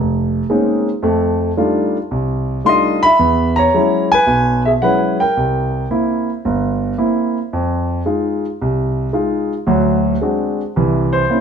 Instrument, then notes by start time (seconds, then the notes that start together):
grand piano
Already playing: F1
0.50 G#3 A#3 C4 C#4 D#4
1.02 F2 A3
1.57 G3 A3 D4 D#4 F4
2.11 C2
2.64 G3 A3 D4 D#4 F4 C6
2.69 D#5
3.03 E5 B5
3.19 E2
3.56 C#5 A#5
3.74 F#3 G#3 C#4 E4
4.12 B4 G#5
4.27 B1
4.65 G#4 E5
4.82 F#3 G#3 C#4 E4 B4 F#5
5.20 A#4 G5
5.37 C2
5.91 A#3 C4 E4
6.45 G1
6.98 A#3 C4 E4
7.53 F2
8.06 G#3 D#4 F4
8.61 C2
9.13 G#3 D#4 F4
9.67 D2 F#3
10.22 G#3 C4 D4 F#4
10.76 C2 E3
11.13 C5
11.30 A#3 C4 C#4 E4